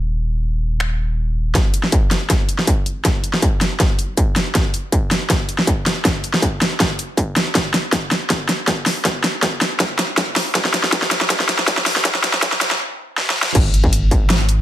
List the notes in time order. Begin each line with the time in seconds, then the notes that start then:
Already playing: D#1
0.80 finger snap
1.55 G#1, kick, snare, closed hi-hat
1.74 closed hi-hat
1.83 snare
1.92 kick, closed hi-hat
2.11 snare, closed hi-hat
2.30 kick, snare, closed hi-hat
2.49 closed hi-hat
2.59 snare
2.67 kick, closed hi-hat
2.86 closed hi-hat
3.05 B1, kick, snare, closed hi-hat
3.24 closed hi-hat
3.33 snare
3.42 kick, closed hi-hat
3.61 snare, closed hi-hat
3.80 kick, snare, closed hi-hat
3.99 closed hi-hat
4.17 kick, closed hi-hat
4.36 snare, closed hi-hat
4.55 F#1, kick, snare, closed hi-hat
4.74 closed hi-hat
4.92 kick, closed hi-hat
5.11 snare, closed hi-hat
5.30 kick, snare, closed hi-hat
5.49 closed hi-hat
5.59 snare
5.67 kick, closed hi-hat
5.86 D#1, snare, closed hi-hat
6.05 kick, snare, closed hi-hat
6.24 closed hi-hat
6.34 snare
6.42 kick, closed hi-hat
6.62 snare, closed hi-hat
6.80 kick, snare, closed hi-hat
6.99 closed hi-hat
7.17 kick, closed hi-hat
7.36 snare, closed hi-hat
7.55 G#1, kick, snare, closed hi-hat
7.74 snare, closed hi-hat
7.92 kick, snare, closed hi-hat
8.11 snare, closed hi-hat
8.30 kick, snare, closed hi-hat
8.49 snare, closed hi-hat
8.67 kick, snare, closed hi-hat
8.86 snare, open hi-hat
9.05 B1, kick, snare, closed hi-hat
9.24 snare, closed hi-hat
9.43 kick, snare, closed hi-hat
9.61 snare, closed hi-hat
9.80 kick, snare, closed hi-hat
9.99 snare, closed hi-hat
10.18 kick, snare, closed hi-hat
10.36 snare, open hi-hat
10.55 kick, snare, closed hi-hat
10.65 snare
10.74 snare, closed hi-hat
10.84 snare
10.92 kick, snare, closed hi-hat
11.02 snare
11.11 snare, closed hi-hat
11.21 snare
11.30 kick, snare, closed hi-hat
11.40 snare
11.49 snare, closed hi-hat
11.59 snare
11.68 kick, snare, closed hi-hat
11.78 snare
11.86 snare, open hi-hat
11.96 snare
12.05 kick, snare, closed hi-hat
12.15 snare
12.24 snare, closed hi-hat
12.34 snare
12.43 kick, snare, closed hi-hat
12.52 snare
12.61 snare, closed hi-hat
12.71 snare
13.18 snare
13.30 snare
13.43 snare
13.55 G#1, kick, closed hi-hat, crash
13.74 closed hi-hat
13.84 kick
13.93 closed hi-hat
14.11 kick, closed hi-hat
14.30 snare, closed hi-hat
14.49 closed hi-hat